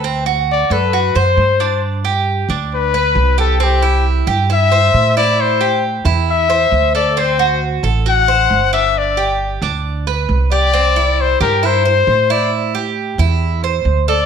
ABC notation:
X:1
M:4/4
L:1/8
Q:1/4=135
K:G
V:1 name="Trumpet"
z2 d B2 c3 | z4 B3 A | G2 z2 e3 d | c2 z2 e3 d |
c2 z2 f3 e | d2 z4 z d- | d2 c _B c3 d | z6 z d |]
V:2 name="Cuban tres"
C F2 A F c2 D- | D G2 D2 B2 G | C E2 G E c2 E- | E G2 E2 c2 A |
C F2 A F c2 D- | D G2 D2 B2 G | C E2 G E c2 E- | E G2 E2 c2 A |]
V:3 name="Upright bass" clef=bass
D,,3 F,,2 F,, G,,2- | G,,3 D,,3 C,,2- | C,,3 G,,3 A,,2- | A,,3 E,,3 D,,2- |
D,,3 A,,,3 G,,,2- | G,,,3 D,,3 C,,2- | C,,3 G,,3 A,,2- | A,,3 E,,3 D,,2 |]